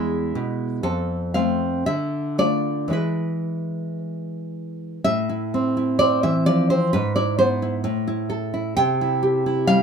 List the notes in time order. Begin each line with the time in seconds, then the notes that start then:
Already playing: E2 G#3 E4 E5
0.35 B2
0.83 F2 A4
1.34 A3 C4 F5
1.86 D3 E5
2.38 A3 F4 D5
2.88 E3 G#3 E4
2.93 B4
5.04 A2 E5
5.29 E4
5.54 C4
5.77 E4
5.99 C4 D5
6.23 E3 E5
6.46 F3 D5
6.70 C4 C5
6.93 G#2 B4
7.16 E4 D5
7.39 B3 C5
7.62 E4
7.84 A2
8.07 E4
8.30 A4
8.54 E4
8.77 C3 G5
9.01 E4
9.23 G4
9.46 E4
9.67 G3 F5